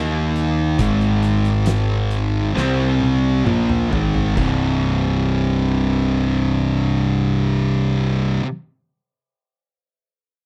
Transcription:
0.00 0.75 D#2 loud
0.00 0.78 D#3 medium
0.00 0.78 A#3 loud
0.00 0.78 D#4 loud
0.36 closed hi-hat medium
0.79 2.50 G#1 loud
0.79 2.53 G#2 loud
0.79 2.53 D#3 loud
0.79 2.54 G#3 loud
0.79 kick loud
0.79 closed hi-hat loud
1.01 closed hi-hat soft
1.23 closed hi-hat medium
1.45 closed hi-hat soft
1.66 snare loud
1.66 closed hi-hat loud
2.11 closed hi-hat medium
2.54 3.41 C2 loud
2.54 3.43 C3 loud
2.54 3.43 G3 loud
2.54 3.43 C4 loud
2.54 snare medium
3.00 high tom medium
3.45 3.87 A#1 loud
3.45 3.89 A#2 medium
3.45 3.89 F3 medium
3.45 3.89 A#3 medium
3.45 mid tom loud
3.69 mid tom medium
3.90 4.33 G#1 loud
3.90 4.35 G#2 loud
3.90 4.35 D#3 loud
3.90 4.35 G#3 loud
3.90 floor tom loud
4.14 floor tom medium
4.36 8.37 C1 loud
4.36 8.41 C2 loud
4.36 8.43 G2 loud
4.36 8.44 C3 loud
4.36 kick loud
4.36 crash medium

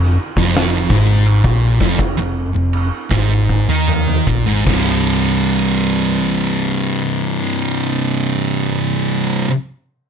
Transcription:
0.00 0.17 F1 medium
0.00 0.13 F2 medium
0.00 snare soft
0.36 0.86 F1 medium
0.36 0.90 F2 medium
0.36 kick loud
0.54 snare loud
0.54 crash medium
0.90 1.40 G#1 medium
0.90 1.44 G#2 medium
0.90 kick loud
1.26 crash medium
1.44 1.78 A#1 medium
1.44 1.80 A#2 loud
1.44 kick loud
1.81 1.98 F1 loud
1.81 1.99 F2 loud
1.81 kick loud
1.99 2.16 F1 medium
1.99 2.18 F2 medium
1.99 kick loud
1.99 crash medium
2.18 2.52 F1 medium
2.18 2.48 F2 medium
2.55 2.89 F1 medium
2.55 2.85 F2 medium
2.73 crash medium
3.11 3.64 G#1 medium
3.11 3.67 G#2 loud
3.11 kick loud
3.49 kick medium
3.69 4.23 D#2 medium
3.69 4.26 D#3 loud
3.88 mid tom medium
4.08 mid tom medium
4.27 4.45 A#1 medium
4.27 4.46 A#2 loud
4.27 kick medium
4.46 4.65 G#1 medium
4.46 4.66 G#2 loud
4.66 9.44 C1 medium
4.66 9.47 C2 medium
4.66 9.49 G2 medium
4.66 kick loud
4.66 crash medium
4.70 9.51 C3 loud

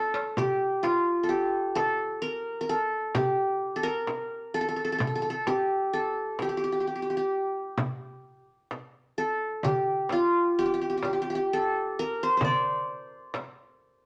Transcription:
0.00 1.08 A4 medium
0.14 darbuka ka medium
0.37 1.29 G4 medium
0.37 frame drum medium
0.83 2.17 F4 medium
0.83 frame drum medium
1.23 1.75 A4 medium
1.29 2.54 G4 medium
1.75 2.28 A4 medium
1.75 frame drum medium
2.22 2.60 A#4 medium
2.61 2.75 A#4 medium
2.69 3.76 A4 medium
3.15 4.40 G4 medium
3.15 frame drum medium
3.76 3.89 A4 medium
3.83 4.60 A#4 medium
4.07 frame drum medium
4.54 4.61 A4 medium
4.61 4.68 A4 medium
4.69 4.76 A4 medium
4.76 4.84 A4 soft
4.85 4.92 A4 medium
4.92 4.98 A4 medium
4.98 5.07 A4 medium
4.98 frame drum medium
5.07 5.15 A4 soft
5.15 5.22 A4 medium
5.22 5.30 A4 medium
5.30 5.93 A4 medium
5.47 6.42 G4 medium
5.47 frame drum medium
5.93 7.11 A4 medium
6.39 6.49 G4 medium
6.39 frame drum medium
6.49 6.57 G4 soft
6.57 6.63 G4 medium
6.64 6.72 G4 soft
6.72 6.80 G4 soft
6.80 6.87 G4 soft
6.87 6.95 G4 soft
6.96 7.02 G4 soft
7.02 7.10 G4 soft
7.10 7.17 G4 soft
7.17 8.42 G4 medium
7.78 frame drum medium
8.71 frame drum medium
9.18 10.35 A4 medium
9.63 10.58 G4 medium
9.63 frame drum medium
9.63 darbuka dum medium
10.09 11.47 F4 medium
10.09 darbuka tek medium
10.09 frame drum medium
10.59 10.65 G4 medium
10.66 10.73 G4 medium
10.74 10.81 G4 medium
10.82 10.89 G4 medium
10.90 10.97 G4 medium
10.98 11.04 G4 soft
11.03 11.12 G4 medium
11.03 darbuka tek medium
11.03 frame drum medium
11.13 11.21 G4 medium
11.22 11.30 G4 medium
11.30 11.35 G4 medium
11.35 12.61 G4 medium
11.53 12.05 A4 medium
11.99 13.12 A#4 medium
12.23 12.37 C5 medium
12.37 13.43 C5 medium
12.37 frame drum medium
12.42 14.06 D5 medium
12.42 darbuka dum medium
12.88 darbuka ka soft
13.34 darbuka tek medium
13.34 frame drum medium

